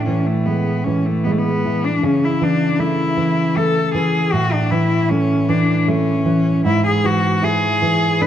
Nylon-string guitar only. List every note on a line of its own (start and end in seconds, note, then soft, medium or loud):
0.00 2.00 A2 soft
0.07 0.71 E3 soft
0.46 1.10 G#3 soft
0.87 1.50 E3 soft
1.27 1.89 G#3 soft
1.65 2.04 E3 soft
2.03 4.29 C#3 medium
2.42 3.03 E3 soft
2.79 3.40 A3 soft
3.17 3.78 E3 soft
3.57 4.18 A3 soft
3.94 4.33 E3 soft
4.33 6.62 A2 medium
4.71 5.34 E3 soft
5.11 5.73 A3 soft
5.49 6.11 E3 soft
5.88 6.50 A3 medium
6.25 6.65 E3 soft
6.65 8.27 G#2 medium
7.04 7.67 E3 soft
7.43 8.05 E4 soft
7.82 8.27 E3 soft
8.22 8.27 D4 medium